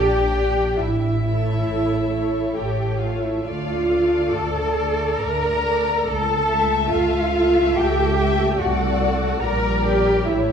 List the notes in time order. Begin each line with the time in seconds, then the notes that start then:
Already playing: A#1 D4 G4 D5 G5
0.31 D4 G4 D5
0.78 A1 E4 E5
1.22 A3 A4 C#5
1.66 A1
2.11 A3 A4 C#5
2.55 A1 G4 G5
3.00 A3 F4 A4 C#5 F5
3.23 E4 E5
3.43 D2 A3 F4 A4 D5 F5
3.90 A3 A4 D5
4.33 D2 A4 A5
4.78 A3 A4 D5
5.20 D2 A#4 A#5
5.64 A3 A4 D5
6.08 C#2 A4 A5
6.47 A3 A4 E5
6.91 C#2 F4 F5
7.33 A3 A4 E5
7.77 C#2 G4 G5
8.16 A3 A4 E5
8.58 C2 A3 F#4 A4 D5 F#5
9.41 A#1 G3 A#4 D5 A#5
9.84 G4 G5
10.25 A1 A3 E4 G4 C#5 E5